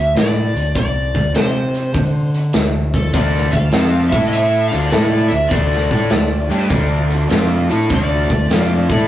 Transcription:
Already playing: D2 E5
0.15 A2 D5, snare, closed hi-hat
0.54 D2, closed hi-hat
0.75 C2 D5, kick, closed hi-hat
1.15 D2, kick, closed hi-hat
1.34 C3 C5, snare, closed hi-hat
1.74 closed hi-hat
1.94 D3, kick, closed hi-hat
2.34 closed hi-hat
2.53 D2, snare, closed hi-hat
2.94 F3 A4, kick, closed hi-hat
3.13 D2 D3 A3 D4 F4 D5, kick, closed hi-hat
3.35 snare
3.51 D2 D3 A4 F5, kick, closed hi-hat
3.55 A3
3.72 F2 F3 C4 F4, snare, closed hi-hat
4.08 A3 E5
4.12 A2 A3 E4 A4, kick, closed hi-hat
4.27 A3 F4 D#5 E5
4.33 closed hi-hat
4.68 D3 A3 E4 F5
4.72 D2 A3 D4 F4 D5, closed hi-hat
4.86 D5
4.90 A2 A3 E4 A4, snare, closed hi-hat
5.28 D2 D4 E5, closed hi-hat
5.32 D3 A3
5.49 D2 D3 A3 D4 D5, kick, closed hi-hat
5.72 snare
5.91 A2 A3 E4 A4, kick, closed hi-hat
6.10 D2 D3 A3, snare, closed hi-hat
6.49 G2 G3 D4 G4, closed hi-hat
6.69 D2 D3 A3 D4, kick, closed hi-hat
7.10 A3 D4 F4, closed hi-hat
7.29 F2 F3 C4 F4, snare, closed hi-hat
7.70 A2 A3 E4 A4, closed hi-hat
7.90 D2 D3 A3 D4, kick, closed hi-hat
7.95 D5
8.30 D2 D3 A3, kick, closed hi-hat
8.50 F2 F3 C4 F4, snare, closed hi-hat
8.90 A2 E3 A3 E4 A4 D5 E5, kick, closed hi-hat

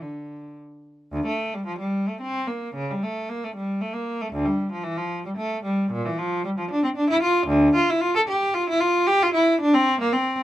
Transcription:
0.01 D3
1.13 D2
1.27 A3
1.54 G3
1.66 F3
1.79 G3
2.08 A3
2.21 C4
2.47 A#3
2.74 C#3
2.90 G3
3.03 A3
3.29 A#3
3.44 A3
3.56 G3
3.81 A3
3.93 A#3
4.21 A3
4.33 D2
4.45 G3
4.72 F3
4.84 E3
4.97 F3
5.25 G3
5.37 A3
5.64 G3
5.91 A#2
6.05 E3
6.18 F3
6.45 G3
6.58 F3
6.71 D4
6.84 C4
6.96 D4
7.10 E4
7.23 F4
7.47 D2
7.75 F4
7.90 E4
8.01 F4
8.16 A4
8.28 G4
8.54 F4
8.69 E4
8.80 F4
9.07 G4
9.23 F4
9.34 E4
9.61 D4
9.74 C4
10.01 A#3
10.13 C4

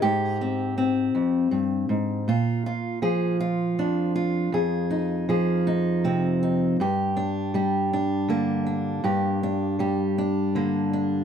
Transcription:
Already playing: G#4
0.02 G#2 G4
0.41 C4
0.78 C4
1.15 F2
1.51 G2
1.89 G#2
2.28 A#2 F4
2.66 F4
3.02 F3 G#4
3.40 F4
3.79 F2 D4
4.16 F4
4.52 F2 G#4
4.91 D#4
5.29 F3 G#4
5.67 D#4
6.04 C3 C4
6.43 D#4
6.80 G2 G4
7.17 D4
7.54 G3 G4
7.93 D4
8.28 D3 A#3
8.66 D4
9.04 G2 G4
9.43 D4
9.79 G3 G4
10.18 D4
10.55 D3 A#3
10.93 D4

